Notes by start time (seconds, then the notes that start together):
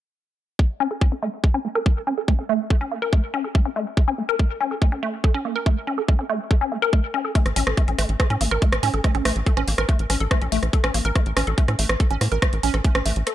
0.59 A3, kick
0.80 C#4
0.91 A4
1.01 A3, kick
1.12 C#4
1.23 A3
1.44 A4, kick
1.54 C#4
1.65 A#3
1.75 A#4
1.86 A3, kick
2.07 C#4
2.18 A4
2.28 A3, kick
2.39 C#4
2.49 A3
2.70 A4, kick
2.81 C#4
2.92 A#3
3.02 A#4
3.13 A3, kick
3.34 C#4
3.44 A4
3.55 A3, kick
3.65 C#4
3.76 A3
3.97 A4, kick
4.08 C#4
4.18 A#3
4.29 A#4
4.39 A3, kick
4.61 C#4
4.71 A4
4.82 A3, kick
4.92 C#4
5.03 A3
5.24 A4, kick
5.34 C#4
5.45 A#3
5.56 A#4
5.66 A3, kick
5.87 C#4
5.98 A4
6.08 A3, kick
6.19 C#4
6.30 A3
6.51 A4, kick
6.61 C#4
6.72 A#3
6.82 A#4
6.93 A3, kick
7.14 C#4
7.25 A4
7.35 A3, kick, closed hi-hat
7.46 A1, cross-stick, closed hi-hat
7.56 A1 C#4, open hi-hat
7.67 A1 A4, cross-stick
7.77 A3, kick, closed hi-hat
7.88 A1 C#4, closed hi-hat
7.99 A1 A3, cross-stick, open hi-hat
8.09 A1, closed hi-hat
8.20 A4, kick, cross-stick, closed hi-hat
8.30 A2 C#4, closed hi-hat
8.41 A1 A#3, open hi-hat
8.51 A1 A#4, cross-stick
8.62 A3, kick, closed hi-hat
8.72 A1, cross-stick, closed hi-hat
8.83 A2 C#4, open hi-hat
8.94 A1 A4, closed hi-hat
9.04 A3, kick, cross-stick, closed hi-hat
9.15 A1 C#4, closed hi-hat
9.25 A#1 A3, cross-stick, open hi-hat
9.36 A1, closed hi-hat
9.46 A4, kick, closed hi-hat
9.57 A1 C#4, cross-stick, closed hi-hat
9.68 A1 A#3, open hi-hat
9.78 A1 A#4, cross-stick, closed hi-hat
9.89 A3, kick, closed hi-hat
9.99 A1, closed hi-hat
10.10 A1 C#4, cross-stick, open hi-hat
10.20 A1 A4
10.31 A3, kick, cross-stick, closed hi-hat
10.42 A#1 C#4, closed hi-hat
10.52 A#1 A3, open hi-hat
10.63 A#1, cross-stick, closed hi-hat
10.73 A4, kick, closed hi-hat
10.84 A1 C#4, cross-stick, closed hi-hat
10.94 A1 A#3, open hi-hat
11.05 A1 A#4, closed hi-hat
11.15 A3, kick, cross-stick, closed hi-hat
11.26 A1, closed hi-hat
11.37 A1 C#4, cross-stick, open hi-hat
11.47 A1 A4, closed hi-hat
11.58 A3, kick, closed hi-hat
11.68 A2 C#4, cross-stick, closed hi-hat
11.79 A1 A3, open hi-hat
11.89 A1, cross-stick
12.00 A4, kick, closed hi-hat
12.11 A1 C#4, closed hi-hat
12.21 A2 A#3, cross-stick, open hi-hat
12.32 A1 A#4, closed hi-hat
12.42 A3, kick, cross-stick, closed hi-hat
12.53 A1, closed hi-hat
12.63 A#1 C#4, open hi-hat
12.74 A1 A4, cross-stick, closed hi-hat
12.84 A3, kick, closed hi-hat
12.95 A1 C#4, cross-stick, closed hi-hat
13.06 A1 A3, open hi-hat
13.16 A1, closed hi-hat
13.27 A4, cross-stick, closed hi-hat